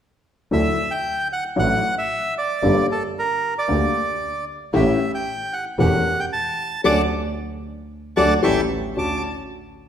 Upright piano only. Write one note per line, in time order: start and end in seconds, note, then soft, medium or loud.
0.51 0.74 D2 medium
0.51 0.74 D3 medium
0.51 0.73 F#3 medium
0.51 0.74 D4 medium
0.51 0.74 E4 medium
0.51 0.74 A4 medium
1.56 1.79 A1 medium
1.56 1.79 A2 medium
1.56 1.79 F#3 medium
1.56 1.79 D4 medium
1.56 1.79 E4 medium
1.56 1.79 A4 medium
2.62 2.85 G1 medium
2.62 2.85 G2 medium
2.62 2.85 G3 medium
2.62 2.85 A#3 medium
2.62 2.85 D4 medium
2.62 2.85 A4 medium
3.68 3.91 D2 medium
3.68 3.90 D3 medium
3.68 3.90 G3 medium
3.68 3.90 A#3 medium
3.68 3.91 D4 medium
3.68 3.91 A4 medium
4.73 4.96 A1 medium
4.73 4.96 A2 medium
4.73 4.96 E3 medium
4.73 4.96 A3 medium
4.73 4.96 C#4 medium
4.73 4.96 G4 medium
5.79 6.01 E1 medium
5.79 6.01 E2 medium
5.79 6.01 E3 medium
5.79 6.01 A3 medium
5.79 6.01 C#4 medium
5.79 6.02 G4 medium
6.84 7.02 D3 medium
6.84 7.01 F#3 medium
6.84 7.01 A3 medium
8.17 8.34 D3 medium
8.17 8.34 F#3 medium
8.17 8.34 A3 medium
8.43 8.60 E3 medium
8.43 8.60 G3 medium
8.43 8.60 A3 medium
8.96 9.19 D2 soft
8.96 9.19 C#4 soft
8.96 9.19 D4 soft
8.96 9.19 F#4 soft